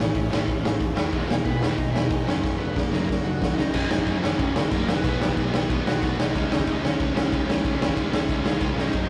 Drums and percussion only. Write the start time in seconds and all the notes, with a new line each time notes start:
0.15 kick, open hi-hat
0.33 snare
0.48 kick, open hi-hat
0.65 snare
0.81 kick, open hi-hat
0.97 snare
1.12 kick, open hi-hat
1.30 snare
1.45 kick, open hi-hat
1.63 snare
1.78 kick, open hi-hat
1.96 snare
2.10 kick, open hi-hat
2.29 snare
2.44 kick, snare
2.76 kick, snare
2.93 snare
3.09 kick, snare
3.42 kick, snare
3.58 snare
3.74 kick, crash
3.91 snare
3.98 kick
4.06 kick, crash
4.24 snare
4.39 kick, crash
4.56 snare
4.72 kick, crash
4.89 snare
5.04 kick, crash
5.22 snare
5.29 kick
5.37 kick, crash
5.54 snare
5.70 kick, crash
5.87 snare
6.02 kick, crash
6.20 snare
6.35 kick, crash
6.52 snare
6.59 kick
6.67 kick, crash
6.85 snare
7.00 kick, crash
7.17 snare
7.32 kick, crash
7.50 snare
7.64 kick, crash
7.82 snare
7.89 kick
7.97 kick, crash
8.13 snare
8.29 kick, crash
8.46 snare
8.61 kick, crash
8.78 snare
8.93 kick, crash